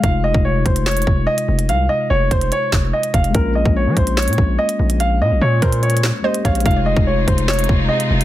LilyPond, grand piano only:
\new Staff \with { instrumentName = "Grand piano" } { \time 4/4 \key f \minor \tempo 4 = 145 f''8 ees''8 des''8 c''8 des''4 ees''4 | f''8 ees''8 des''8 c''8 des''4 ees''8 f''8 | bes'8 ees''8 des''8 c''8 des''4 ees''4 | f''8 ees''8 des''8 c''8 des''4 ees''8 f''8 |
f''8 ees''8 des''8 c''8 des''4 ees''4 | }